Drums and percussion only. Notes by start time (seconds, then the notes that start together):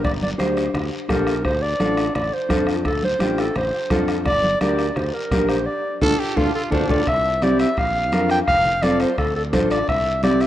0.04 bombo low, bombo rim, low conga, long guiro
0.22 high conga
0.39 bombo rim, high conga, short guiro
0.57 bombo rim, short guiro
0.75 bombo rim, low conga, long guiro
1.09 bombo low, bombo rim, high conga, low conga, short guiro
1.27 bombo rim, short guiro
1.45 bombo low, bombo rim, long guiro
1.80 bombo rim, high conga, short guiro
1.97 bombo rim, short guiro
2.15 bombo rim, low conga, long guiro
2.50 bombo low, bombo rim, high conga, short guiro
2.67 bombo rim, short guiro
2.85 bombo low, bombo rim, low conga, long guiro
3.03 high conga
3.20 bombo rim, high conga, short guiro
3.38 bombo rim, short guiro
3.55 bombo rim, low conga, long guiro
3.90 bombo low, bombo rim, high conga, low conga, short guiro
4.08 bombo rim, short guiro
4.25 bombo low, bombo rim, low conga, long guiro
4.43 high conga
4.61 bombo rim, high conga, short guiro
4.79 bombo rim, short guiro
4.96 bombo rim, low conga, long guiro
5.31 bombo low, bombo rim, high conga, low conga, short guiro
5.49 bombo rim, short guiro
6.01 bombo low, low conga, long guiro
6.37 bombo low, low conga, long guiro
6.72 bombo low, low conga, long guiro
6.89 bombo low, low conga, long guiro
7.07 bombo low, bombo rim, high conga, long guiro
7.42 bombo rim, high conga, short guiro
7.59 bombo rim, short guiro
7.77 bombo low, bombo rim, high conga, long guiro
8.12 bombo rim, high conga, short guiro
8.30 bombo rim, short guiro
8.48 bombo low, bombo rim, high conga, long guiro
8.65 low conga
8.83 bombo rim, high conga, short guiro
9.00 bombo rim, short guiro
9.18 bombo low, bombo rim, high conga, long guiro
9.53 bombo low, bombo rim, high conga, low conga, short guiro
9.70 bombo rim, short guiro
9.88 bombo low, bombo rim, high conga, long guiro
10.23 bombo rim, high conga, short guiro
10.41 bombo rim, short guiro